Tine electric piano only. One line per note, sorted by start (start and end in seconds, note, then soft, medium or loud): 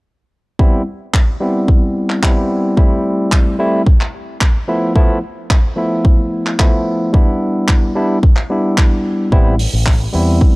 0.59 0.81 G3 medium
0.59 0.81 B3 medium
0.59 0.81 C4 medium
0.59 0.82 E4 loud
1.40 2.19 G3 medium
1.40 2.20 B3 medium
1.40 2.20 C4 medium
1.40 2.20 E4 medium
2.23 2.74 G3 medium
2.23 2.74 B3 medium
2.23 2.74 C4 medium
2.23 2.75 E4 medium
2.76 3.56 G3 medium
2.76 3.56 A3 medium
2.76 3.56 C4 medium
2.76 3.57 E4 medium
3.59 3.81 G3 medium
3.59 3.81 A3 medium
3.59 3.81 C4 medium
3.59 3.82 E4 medium
4.68 4.92 F3 medium
4.68 4.92 A3 medium
4.68 4.93 B3 medium
4.68 4.93 E4 medium
4.95 5.17 F3 medium
4.95 5.18 A3 medium
4.95 5.18 B3 medium
4.95 5.18 E4 loud
5.76 6.55 F3 medium
5.76 6.56 A3 medium
5.76 6.56 B3 medium
5.76 6.56 E4 medium
6.59 7.11 F3 medium
6.59 7.11 A3 medium
6.59 7.11 B3 medium
6.59 7.11 E4 medium
7.13 7.92 G3 medium
7.13 7.92 B3 medium
7.13 7.93 D4 medium
7.13 7.93 E4 medium
7.95 8.17 G3 medium
7.95 8.18 B3 medium
7.95 8.18 D4 medium
7.95 8.18 E4 medium
8.50 9.29 G3 medium
8.50 9.29 B3 medium
8.50 9.29 D4 medium
8.50 9.30 E4 medium
9.32 9.54 G3 medium
9.32 9.54 B3 medium
9.32 9.54 C4 medium
9.32 9.54 E4 loud
10.13 10.56 G3 medium
10.13 10.56 B3 medium
10.13 10.56 C4 medium
10.13 10.56 E4 medium